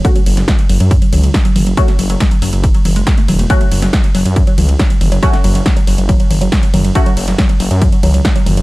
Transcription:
<<
  \new Staff \with { instrumentName = "Synth stab" } { \time 4/4 \key fis \minor \tempo 4 = 139 <a cis' fis'>8 r2. r8 | <a cis' fis'>8 r2. r8 | <a cis' fis'>8 r2. r8 | <a cis' fis'>8 r2. r8 |
<a cis' fis'>8 r2. r8 | }
  \new Staff \with { instrumentName = "Synth arpeggio sound" } { \clef bass \time 4/4 \key fis \minor fis16 fis16 fis16 fis16 fis16 fis16 fis16 fis16 fis16 fis16 fis16 fis16 fis16 fis16 fis16 fis16 | fis16 fis16 fis16 fis16 fis16 fis16 fis16 fis16 fis16 fis16 fis16 gis16 gis16 a16 fis16 a16 | fis16 fis16 fis16 fis16 fis16 fis16 fis16 fis16 fis16 fis16 fis16 fis16 fis16 fis16 fis16 fis16 | fis16 fis16 fis16 fis16 fis16 fis16 fis16 fis16 fis16 fis16 fis16 fis16 fis16 fis16 fis16 fis16 |
fis16 fis16 fis16 fis16 fis16 fis16 fis16 fis16 fis16 fis16 fis16 fis16 fis16 fis16 fis16 fis16 | }
  \new Staff \with { instrumentName = "Detuned saw bass" } { \clef bass \time 4/4 \key fis \minor r8 fis,,8 r8 fis,,16 fis,8 r16 cis,8 r8 fis,,8 | r8 fis,,8 r8 fis,,16 fis,,8 r16 fis,,8 r8 e,,8 | r8 fis,,8 r8 fis,,16 fis,8 r16 cis,8 r8 fis,,8 | r8 fis,,8 r8 fis,,16 fis,,8 r16 fis,,8 r8 fis,,8 |
r8 fis,,8 r8 fis,,16 fis,8 r16 cis,8 r8 fis,,8 | }
  \new DrumStaff \with { instrumentName = "Drums" } \drummode { \time 4/4 <hh bd cymr>16 <hh cymr>16 <hho cymr>16 <hh cymr sn>16 <hh bd cymr sn>16 <hh cymr>16 <hho cymr>16 <hh cymr>16 <hh bd cymr>16 <hh cymr>16 <hho cymr toml>16 <hh cymr>16 <hh bd cymr sn>16 <hh cymr>16 <hho cymr toml>16 <hh cymr>16 | <hh bd cymr>16 <hh cymr sn>16 <hho cymr>16 <hh cymr>16 <hh bd cymr sn>16 <hh cymr>16 <hho cymr>16 <hh cymr>16 <hh bd cymr>16 <hh cymr>16 <hho cymr toml>16 <hh cymr>16 <hh bd cymr sn>16 <hh cymr>16 <hho cymr toml>16 <hh cymr>16 | <hh bd cymr>16 <hh cymr>16 <hho cymr>16 <hh cymr sn>16 <hh bd cymr sn>16 <hh cymr>16 <hho cymr>16 <hh cymr>16 <hh bd cymr>16 <hh cymr>16 <hho cymr toml>16 <hh cymr>16 <hh bd cymr sn>16 <hh cymr>16 <hho cymr toml>16 <hh cymr>16 | <hh bd cymr>16 <hh cymr sn>16 <hho cymr>16 <hh cymr>16 <hh bd cymr sn>16 <hh cymr>16 <hho cymr>16 <hh cymr>16 <hh bd cymr>16 <hh cymr>16 <hho cymr toml>16 <hh cymr>16 <hh bd cymr sn>16 <hh cymr>16 <hho cymr toml>16 <hh cymr>16 |
<hh bd cymr>16 <hh cymr>16 <hho cymr>16 <hh cymr sn>16 <hh bd cymr sn>16 <hh cymr>16 <hho cymr>16 <hh cymr>16 <hh bd cymr>16 <hh cymr>16 <hho cymr toml>16 <hh cymr>16 <hh bd cymr sn>16 <hh cymr>16 <hho cymr toml>16 <hh cymr>16 | }
>>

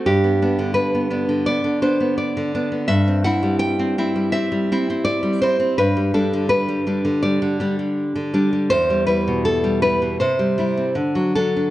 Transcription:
\new Staff \with { instrumentName = "Nylon-string guitar" } { \time 4/4 \key g \major \tempo 4 = 82 << { g'4 b'4 d''8 c''8 d''4 | e''8 fis''8 g''4 e''4 d''8 c''8 | b'8 a'8 b'4 d''8 r4. | c''8 b'8 a'8 b'8 c''4. a'8 | } \\ { g,16 b16 <b d'>16 d8 b16 <b d'>16 d16 b16 d16 <b d'>16 b8 d16 <b d'>16 b16 | g,16 c'16 <c' e'>16 g8 c'16 <c' e'>16 g16 c'16 g16 <c' e'>16 c'8 g16 <c' e'>16 c'16 | g,16 g16 <g d'>16 d8 g16 <g d'>16 d16 g16 d16 <g d'>16 g8 d16 <g d'>16 g16 | e,16 g16 <g e'>16 b,8 g16 <g e'>16 b,16 c16 g16 <g e'>16 c'16 d16 fis16 <fis d'>16 d'16 | } >> }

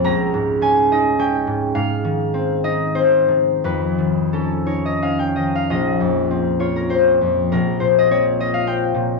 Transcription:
\new Staff \with { instrumentName = "Harp" } { \time 3/4 \key bes \dorian \tempo 4 = 100 << { <des'' f'' aes'' bes''>4 aes''8 ees''8 g''4 | f''4. ees''8 c''4 | ces''4 a'8 cis''16 ees''16 f''16 g''16 ees''16 f''16 | ees''4. des''16 bes'16 c''4 |
bes'8 c''16 ees''16 des''8 ees''16 f''16 g''4 | } \\ { <des, f'>8 aes,8 des'8 ees'8 des'8 aes,8 | aes,8 ees8 c'8 ees'8 c'8 ees8 | f,8 ees8 cis'8 ees'8 cis'8 ees8 | bes,,8 f,8 c'8 f'8 c'8 f,8 |
bes,,8 bes,8 c'8 f'8 c'8 bes,8 | } >> }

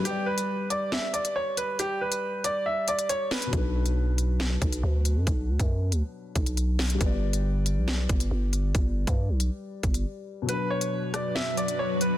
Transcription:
<<
  \new Staff \with { instrumentName = "Upright piano" } { \time 4/4 \key g \lydian \tempo 4 = 138 g'8 b'4 d''8 e''8 d''8 cis''8 b'8 | g'8 b'4 d''8 e''8 d''8 cis''8 b'8 | r1 | r1 |
r1 | r1 | b'8 cis''4 d''8 e''8 d''8 cis''8 b'8 | }
  \new Staff \with { instrumentName = "Grand piano" } { \time 4/4 \key g \lydian <g g' b' d''>1~ | <g g' b' d''>1 | <b, fis d' b'>1~ | <b, fis d' b'>1 |
<g g' b' d''>1~ | <g g' b' d''>1 | <b, fis d' b'>1 | }
  \new Staff \with { instrumentName = "Ambient pad" } { \time 4/4 \key g \lydian r1 | r1 | r1 | r1 |
r1 | r1 | <fis d' b'>1 | }
  \new Staff \with { instrumentName = "808-style bass" } { \clef bass \time 4/4 \key g \lydian r1 | r1 | b,,2~ b,,8 b,,8 d,8. fis,16 | b,,8 d,16 fis,8. d,16 r8. b,,4. |
g,,4.~ g,,16 b,,8. g,,8 g,,4 | g,,8. g,8 b,,8 r8. g,,8 r4 | r1 | }
  \new DrumStaff \with { instrumentName = "Drums" } \drummode { \time 4/4 hh8. hh16 r8 hh8 sn8 hh16 hh16 r8 hh8 | hh8. hh16 r8 hh8 r8 hh16 hh16 hh8 <hho sn>16 hh16 | <hh bd>8. hh16 r8 hh8 sn8 <hh bd>16 hh16 r8 hh8 | <hh bd>8. <hh bd>16 r8 hh8 r8 <hh bd>16 hh16 hh8 <hho sn>16 hh16 |
<hh bd>8. hh16 r8 hh8 sn8 <hh bd>16 hh16 r8 hh8 | <hh bd>8. <hh bd>16 r8 hh8 r8 <hh bd>16 hh16 r4 | hh8. hh16 r8 <hh ss>8 sn8 hh16 hh16 r8 hh8 | }
>>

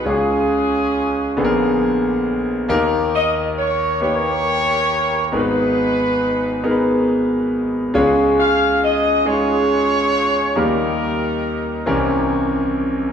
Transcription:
<<
  \new Staff \with { instrumentName = "Horn section" } { \time 6/8 \key gis \minor \tempo 4. = 46 <cis' eis' gis'>2 r4 | r8 dis''8 cis''8 <g' ais' cis''>4. | <dis' gis' b'>2 r4 | \key des \major r8 f''8 ees''8 <f' aes' des''>4. |
<ees' g' bes'>2 r4 | }
  \new Staff \with { instrumentName = "Grand piano" } { \time 6/8 \key gis \minor <gis cis' eis' gis'>4~ <gis cis' eis' gis'>16 r16 <d b gis' a' ais'>4~ <d b gis' a' ais'>16 r16 | <ais dis' g' ais'>4~ <ais dis' g' ais'>16 r16 <ais dis' g' b' cis''>4~ <ais dis' g' b' cis''>16 r16 | <b dis' gis' ais' b'>4~ <b dis' gis' ais' b'>16 r16 <b dis' gis' ais' b'>4~ <b dis' gis' ais' b'>16 r16 | \key des \major <aes des' f' aes' des''>4~ <aes des' f' aes' des''>16 r16 <aes des' ees' f' aes' des''>4~ <aes des' ees' f' aes' des''>16 r16 |
<g bes ees' g' bes'>4~ <g bes ees' g' bes'>16 r16 <e c' des' g' bes'>4~ <e c' des' g' bes'>16 r16 | }
  \new Staff \with { instrumentName = "Grand piano" } { \clef bass \time 6/8 \key gis \minor <cis, cis>4. <ais,, ais,>4. | <dis, dis>2. | <gis,, gis,>2. | \key des \major <des, des>2. |
<ees, ees>4. <c, c>4. | }
>>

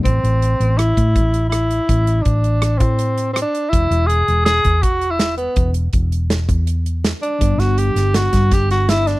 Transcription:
<<
  \new Staff \with { instrumentName = "Tenor saxophone" } { \time 5/4 \key a \dorian \tempo 4 = 163 c'2 e'2 e'4~ | e'4 d'4. c'4. c'16 d'8. | e'4 gis'4 gis'4 fis'8. e'8. b8~ | b8 r1 d'8~ |
d'8 fis'8 g'4 fis'4 g'8 fis'8 e'8 d'8 | }
  \new Staff \with { instrumentName = "Tine electric piano" } { \time 5/4 \key a \dorian r1 r4 | r1 r4 | r1 r4 | r1 r4 |
<d g b d'>1~ <d g b d'>4 | }
  \new Staff \with { instrumentName = "Fingered electric bass" } { \clef bass \time 5/4 \key a \dorian a,,8 a,,4 a,,4 a,8 a,,2 | a,,4 a,,4. a,2 r8 | e,,8 e,,4 e,,4 e,8 e,,2 | e,,4 e,,4. e,2 r8 |
g,,8 g,,4 g,,4 g,8 g,,2 | }
  \new DrumStaff \with { instrumentName = "Drums" } \drummode { \time 5/4 <hh bd>8 hh8 hh8 hh8 <hh ss>8 <hh bd>8 <hh bd>8 hh8 <hh ss>8 hh8 | <hh bd>8 hh8 <hh bd>8 hh8 <hh ss>8 <hh bd>8 hh8 hh8 <hh ss>8 hh8 | <hh bd>8 hh8 hh8 hh8 <hh sn>8 <hh bd>8 <hh bd>8 hh8 <hh sn>8 hh8 | <hh bd>8 hh8 <hh bd>8 hh8 <hh sn>8 <hh bd>8 hh8 hh8 <hh sn>8 hh8 |
<hh bd>8 <hh sn>8 hh8 <hh sn>8 <hh sn>8 <hh bd sn>8 <hh bd sn>8 <hh sn>8 <hh sn>8 <hh sn>8 | }
>>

